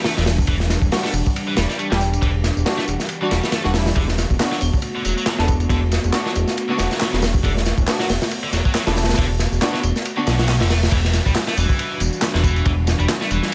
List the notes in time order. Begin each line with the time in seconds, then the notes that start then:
Already playing: E3 G3 D4 F#4
0.04 A3, snare, open hi-hat, tambourine
0.17 E1 D3, snare
0.26 snare, open hi-hat, tambourine
0.38 kick, tambourine
0.47 E1 E3 G4, kick, ride, tambourine
0.60 snare
0.70 snare, ride, tambourine
0.82 E1, kick, tambourine
0.91 G3 D4 F#4, snare, open hi-hat, tambourine
1.04 A3, snare
1.13 E1, ride, tambourine
1.26 kick, tambourine
1.36 ride, tambourine
1.48 E3
1.56 E1 G3, snare, ride, tambourine
1.70 G3, snare, tambourine
1.79 A3, ride, tambourine
1.91 E1 D3 G3 D4 G4, snare, ride
2.01 snare, tambourine
2.13 ride, tambourine
2.22 E1 E3, kick, ride
2.44 snare, ride, tambourine
2.57 E1, tambourine
2.66 G3 D4 F#4, snare, ride, tambourine
2.78 A3, snare
2.88 E1, ride, tambourine
3.00 snare, tambourine
3.09 ride, tambourine
3.21 E3 G3 D4 F#4
3.31 E1 G3, snare, ride, tambourine
3.43 G3, snare, tambourine
3.52 A3, snare, ride, tambourine
3.64 E1 D3 G3 D4 F#4, snare
3.74 G3 D4 E4, snare, open hi-hat, tambourine
3.86 snare, open hi-hat, tambourine
3.96 E1 D3 A3 B3 F#4, kick, ride, tambourine
4.08 snare
4.18 snare, ride, tambourine
4.30 E1, kick, tambourine
4.39 B3 D4 F#4, snare, clap, open hi-hat, tambourine
4.51 F#3, snare
4.61 E1, ride, tambourine
4.74 kick, tambourine
4.82 ride, tambourine
4.95 D3
5.05 E1 F#3, ride, tambourine
5.17 F#3, tambourine
5.26 F#3, snare, clap, ride
5.39 E1 C#3 B3 D4 A4, snare
5.48 kick, ride, tambourine
5.60 ride, tambourine
5.69 E1 D3, kick, ride, tambourine
5.92 snare, ride, tambourine
6.04 E1, tambourine
6.13 B3 D4 F#4, snare, clap, ride, tambourine
6.26 F#3, snare
6.35 E1, ride, tambourine
6.48 snare, tambourine
6.57 ride, tambourine
6.69 D3 B3 D4 F#4
6.78 E1 F#3, snare, ride, tambourine
6.91 F#3, snare, tambourine
7.00 F#3, snare, clap, open hi-hat, tambourine
7.13 E1 C#3, snare
7.22 snare, open hi-hat, tambourine
7.34 kick, tambourine
7.43 E1 D3, kick, ride, tambourine
7.57 snare
7.66 snare, ride, tambourine
7.78 E1, kick, tambourine
7.88 B3 D4 F#4, snare, clap, open hi-hat, tambourine
7.99 F#3, snare
8.09 E1, snare, open hi-hat, tambourine
8.21 snare, open hi-hat, tambourine
8.31 ride, tambourine
8.43 D3
8.53 E1 F#3, snare, ride, tambourine
8.65 F#3, kick, tambourine
8.75 F#3, snare, clap, open hi-hat, tambourine
8.87 E1 C#3 B3 D4 A4, snare, open hi-hat
8.96 snare, open hi-hat, tambourine
9.03 snare, open hi-hat
9.09 snare, open hi-hat, tambourine
9.14 snare, open hi-hat
9.18 E1 D3, kick, ride, tambourine
9.39 snare, ride, tambourine
9.52 E1, tambourine
9.62 B3 D4 F#4, snare, clap, ride, tambourine
9.74 F#3, snare
9.83 E1, ride, tambourine
9.96 snare, tambourine
10.05 ride, tambourine, reverse cymbal
10.17 D3 B3 D4 F#4
10.27 B1 D3, snare, open hi-hat, tambourine
10.39 F#3, snare, open hi-hat, tambourine
10.48 C#4, snare, clap, open hi-hat, tambourine
10.61 E1 D3, snare, open hi-hat
10.70 A3, snare, open hi-hat, tambourine
10.82 snare, open hi-hat, tambourine
10.91 E1 E3 G3 D4 F#4, kick, crash, ride, tambourine, downlifter
11.05 snare
11.13 snare, ride, tambourine
11.26 E1 G3, kick, tambourine
11.35 snare, clap, open hi-hat, tambourine
11.47 A3, snare
11.57 E1 E3, ride, tambourine
11.69 kick, tambourine
11.79 ride, tambourine
12.00 E1, ride, tambourine
12.13 tambourine
12.22 snare, clap, ride, tambourine
12.34 E1 D3, snare
12.44 E3, kick, ride, tambourine
12.56 ride, tambourine
12.65 E1 E3, kick, ride, tambourine
12.87 snare, ride, tambourine
13.00 E1 G3, tambourine
13.09 snare, clap, ride, tambourine
13.21 A3, snare
13.31 E1 E3, ride, tambourine
13.43 snare, tambourine